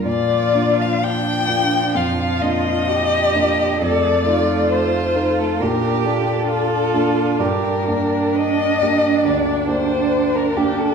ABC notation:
X:1
M:4/4
L:1/16
Q:1/4=66
K:Bb
V:1 name="Violin"
d3 f g4 f2 e6 | d4 c3 A B2 A6 | B4 e4 d2 c3 B G A |]
V:2 name="Cello"
F4 D4 F4 G4 | A2 F6 G4 F4 | G2 D12- D2 |]
V:3 name="Grand piano"
B,,2 [B,DF]4 [B,DF]2 F,,2 [B,DF]4 [B,DF]2 | F,,2 [A,EF]4 [A,EF]2 B,,2 [B,DF]4 [B,DF]2 | G,,2 [B,DG]4 [B,DG]2 D,,2 [B,DG]4 [B,DG]2 |]
V:4 name="Viola"
F,16 | A,8 D8- | D16 |]